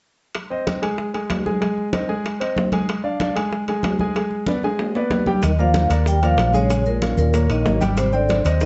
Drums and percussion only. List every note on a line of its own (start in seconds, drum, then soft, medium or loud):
0.35 high bongo medium
0.35 high conga soft
0.35 high timbale medium
0.51 high conga soft
0.67 high bongo medium
0.67 high conga medium
0.67 high timbale medium
0.67 low timbale soft
0.83 high conga soft
0.83 high timbale medium
0.98 high bongo medium
0.98 high conga soft
1.14 high conga soft
1.14 high timbale medium
1.30 high bongo medium
1.30 low bongo medium
1.30 high conga medium
1.30 high timbale medium
1.30 low timbale medium
1.46 high conga medium
1.62 high bongo medium
1.62 high conga soft
1.62 high timbale medium
1.78 high conga soft
1.93 high bongo medium
1.93 high conga medium
1.93 high timbale medium
1.93 low timbale medium
2.09 high bongo soft
2.09 high conga soft
2.25 high bongo medium
2.25 high conga soft
2.25 high timbale medium
2.41 high bongo soft
2.41 high conga soft
2.41 high timbale medium
2.56 high bongo medium
2.56 low bongo medium
2.56 high conga medium
2.56 low timbale medium
2.72 high bongo soft
2.72 high conga medium
2.72 high timbale medium
2.88 high bongo medium
2.88 high conga soft
2.88 high timbale medium
3.04 high conga soft
3.20 high bongo medium
3.20 high conga medium
3.20 high timbale medium
3.20 low timbale medium
3.36 high conga soft
3.36 high timbale medium
3.52 high bongo medium
3.52 high conga soft
3.68 high conga soft
3.68 high timbale medium
3.83 high bongo medium
3.83 low bongo medium
3.83 high conga medium
3.83 high timbale medium
3.83 low timbale medium
3.99 high conga medium
4.15 high bongo medium
4.15 high conga soft
4.15 high timbale medium
4.31 high conga soft
4.47 high bongo medium
4.47 high conga medium
4.47 high timbale medium
4.63 high bongo soft
4.63 high conga soft
4.63 high timbale medium
4.79 high bongo medium
4.79 high conga soft
4.79 low timbale medium
4.95 high bongo soft
4.95 high conga soft
4.95 low timbale medium
5.10 high bongo medium
5.10 low bongo medium
5.10 high conga medium
5.10 low timbale medium
5.26 high bongo soft
5.26 high conga medium
5.26 low timbale medium
5.42 high bongo medium
5.42 high conga soft
5.42 high timbale medium
5.42 maracas medium
5.58 high conga soft
5.58 maracas soft
5.74 high bongo medium
5.74 high conga medium
5.74 high timbale medium
5.74 low timbale medium
5.74 maracas soft
5.90 high conga soft
5.90 high timbale medium
5.90 maracas medium
6.06 high bongo medium
6.06 high conga soft
6.06 maracas medium
6.22 high conga soft
6.22 high timbale medium
6.22 maracas soft
6.37 high bongo medium
6.37 low bongo medium
6.37 high conga medium
6.37 high timbale medium
6.37 low timbale medium
6.37 maracas soft
6.53 high conga medium
6.53 maracas medium
6.70 high bongo medium
6.70 high conga soft
6.70 high timbale medium
6.70 maracas medium
6.86 high conga soft
6.86 maracas soft
7.02 high bongo medium
7.02 high conga medium
7.02 high timbale medium
7.02 low timbale medium
7.02 maracas soft
7.18 high bongo soft
7.18 high conga soft
7.18 maracas medium
7.34 high bongo medium
7.34 high conga soft
7.34 high timbale medium
7.34 maracas medium
7.49 high bongo soft
7.49 high conga soft
7.49 high timbale medium
7.49 maracas soft
7.66 high bongo medium
7.66 low bongo medium
7.66 high conga medium
7.66 low timbale medium
7.66 maracas soft
7.81 high bongo soft
7.81 high conga medium
7.81 high timbale medium
7.81 maracas medium
7.97 high bongo medium
7.97 high conga soft
7.97 high timbale medium
7.97 maracas medium
8.13 high conga soft
8.13 maracas soft
8.29 high bongo medium
8.29 high conga medium
8.29 high timbale medium
8.29 low timbale medium
8.29 maracas soft
8.45 high conga soft
8.45 high timbale medium
8.45 maracas medium
8.60 high bongo medium
8.60 high conga soft
8.60 maracas medium